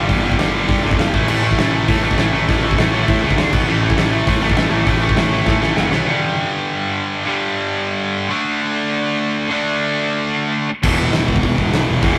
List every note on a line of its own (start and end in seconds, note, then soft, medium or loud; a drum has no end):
0.00 1.14 D4 loud
0.08 0.34 G1 medium
0.08 0.23 G2 medium
0.08 0.24 D3 medium
0.08 0.24 G3 loud
0.08 kick loud
0.08 open hi-hat medium
0.24 0.39 G2 medium
0.24 0.39 D3 loud
0.24 0.38 G3 medium
0.32 kick medium
0.39 0.64 G1 medium
0.39 0.52 G2 medium
0.39 0.53 D3 medium
0.39 0.53 G3 loud
0.39 snare loud
0.39 open hi-hat medium
0.53 0.68 G2 medium
0.53 0.68 D3 medium
0.53 0.67 G3 medium
0.68 0.81 G2 medium
0.68 0.82 G2 medium
0.68 0.82 D3 medium
0.68 0.82 G3 medium
0.68 kick loud
0.68 open hi-hat medium
0.83 0.97 G1 medium
0.83 0.98 G2 loud
0.83 0.98 D3 loud
0.83 0.97 G3 loud
0.91 kick loud
0.98 1.11 G1 medium
0.98 1.13 G2 medium
0.98 1.12 D3 medium
0.98 1.13 G3 loud
0.98 snare loud
0.98 open hi-hat medium
1.13 1.27 A1 medium
1.13 1.28 A2 medium
1.13 1.28 E3 loud
1.13 1.29 A3 loud
1.13 kick loud
1.28 1.54 A1 medium
1.28 1.43 A2 medium
1.28 1.42 E3 loud
1.28 1.43 A3 loud
1.28 crash loud
1.43 1.56 A2 medium
1.43 1.57 E3 medium
1.43 1.58 A3 loud
1.51 kick medium
1.58 1.84 A1 medium
1.58 1.72 A2 loud
1.58 1.72 E3 loud
1.58 1.71 A3 loud
1.58 snare loud
1.58 open hi-hat medium
1.72 1.86 A2 medium
1.72 1.87 E3 medium
1.72 1.87 A3 medium
1.87 2.03 A2 medium
1.87 2.01 A2 medium
1.87 2.02 E3 medium
1.87 2.01 A3 medium
1.87 kick loud
1.87 open hi-hat medium
2.02 2.15 A1 medium
2.02 2.17 A2 medium
2.02 2.18 E3 loud
2.02 2.19 A3 medium
2.11 kick loud
2.18 2.31 A1 medium
2.18 2.33 A2 medium
2.18 2.33 E3 medium
2.18 2.32 A3 loud
2.18 snare loud
2.18 open hi-hat medium
2.32 2.45 A1 medium
2.32 2.48 A2 medium
2.32 2.48 E3 medium
2.32 2.49 A3 loud
2.48 2.73 A1 medium
2.48 2.64 A2 medium
2.48 2.63 E3 loud
2.48 2.62 A3 loud
2.48 kick loud
2.48 open hi-hat medium
2.63 2.77 A2 medium
2.63 2.78 E3 medium
2.63 2.79 A3 loud
2.71 kick medium
2.78 3.03 A1 medium
2.78 2.94 A2 loud
2.78 2.93 E3 medium
2.78 2.92 A3 loud
2.78 snare loud
2.78 open hi-hat medium
2.94 3.06 A2 medium
2.94 3.07 E3 medium
2.94 3.08 A3 medium
3.08 3.22 A2 medium
3.08 3.21 A2 loud
3.08 3.21 E3 medium
3.08 3.21 A3 medium
3.08 kick loud
3.08 open hi-hat medium
3.22 3.38 C#2 loud
3.22 3.36 A2 loud
3.22 3.37 E3 medium
3.22 3.36 A3 loud
3.31 kick medium
3.36 3.51 D2 medium
3.36 3.51 D3 loud
3.36 3.51 A3 loud
3.36 3.52 D4 loud
3.36 snare loud
3.36 open hi-hat medium
3.52 3.65 B1 medium
3.52 3.67 B2 medium
3.52 3.67 F#3 loud
3.52 3.67 B3 loud
3.52 kick loud
3.52 crash loud
3.67 3.92 A1 medium
3.67 3.82 A2 loud
3.67 3.81 E3 loud
3.67 3.80 A3 loud
3.82 3.95 A2 medium
3.82 3.97 E3 medium
3.82 3.97 A3 medium
3.90 kick loud
3.96 4.22 A1 medium
3.96 4.12 A2 loud
3.96 4.11 E3 loud
3.96 4.11 A3 loud
3.96 snare loud
3.96 open hi-hat medium
4.12 4.26 A2 medium
4.12 4.26 E3 medium
4.12 4.27 A3 medium
4.27 4.39 A2 loud
4.27 4.42 A2 medium
4.27 4.42 E3 loud
4.27 4.41 A3 loud
4.27 kick loud
4.27 open hi-hat medium
4.42 4.54 A1 loud
4.42 4.55 A2 medium
4.42 4.56 E3 loud
4.42 4.56 A3 loud
4.50 kick medium
4.56 4.69 A1 medium
4.56 4.72 A2 loud
4.56 4.71 E3 medium
4.56 4.71 A3 loud
4.56 snare loud
4.56 open hi-hat medium
4.70 4.83 A1 medium
4.70 4.85 A2 medium
4.70 4.86 E3 loud
4.70 4.87 A3 medium
4.87 5.12 A1 loud
4.87 5.02 A2 loud
4.87 5.01 E3 loud
4.87 5.01 A3 loud
4.87 kick loud
4.87 open hi-hat medium
5.02 5.16 A2 medium
5.02 5.16 E3 medium
5.02 5.17 A3 loud
5.09 kick loud
5.16 5.41 A1 medium
5.16 5.32 A2 loud
5.16 5.32 E3 loud
5.16 5.31 A3 loud
5.16 snare loud
5.16 open hi-hat medium
5.32 5.46 A2 medium
5.32 5.47 E3 medium
5.32 5.47 A3 medium
5.46 5.59 A2 loud
5.46 5.61 A2 medium
5.46 5.60 E3 medium
5.46 5.60 A3 medium
5.46 kick loud
5.46 snare medium
5.60 5.73 A1 loud
5.60 5.76 A2 medium
5.60 5.76 E3 loud
5.60 5.76 A3 loud
5.60 snare medium
5.76 5.89 F#1 loud
5.76 5.90 F#2 loud
5.76 5.91 C#3 loud
5.76 5.91 F#3 loud
5.76 snare medium
5.91 6.04 B1 medium
5.91 6.06 B2 medium
5.91 6.06 F#3 loud
5.91 6.06 B3 loud
5.91 snare medium
6.06 7.23 G2 loud
6.06 7.25 D3 loud
6.06 7.26 G3 loud
7.25 8.29 G2 loud
7.25 8.28 D3 loud
7.25 8.30 G3 loud
8.29 9.48 D3 loud
8.29 9.49 A3 loud
8.29 9.50 D4 loud
9.49 10.68 D3 loud
9.49 10.69 A3 loud
9.49 10.69 D4 loud
10.82 10.96 E1 loud
10.82 12.01 E2 medium
10.82 12.02 B2 loud
10.82 12.05 E3 loud
10.82 kick loud
10.82 crash loud
10.99 11.12 E1 loud
11.13 11.26 E1 medium
11.13 snare loud
11.13 open hi-hat medium
11.28 11.41 E1 loud
11.28 kick medium
11.36 kick loud
11.43 11.56 E1 loud
11.43 kick loud
11.43 open hi-hat medium
11.58 11.71 E1 loud
11.58 kick loud
11.73 11.86 B1 medium
11.73 snare loud
11.73 open hi-hat medium
11.88 12.01 E1 medium
12.02 12.16 E1 loud
12.02 12.18 E2 loud
12.02 12.18 B2 loud
12.02 12.18 E3 loud
12.02 kick loud
12.02 open hi-hat medium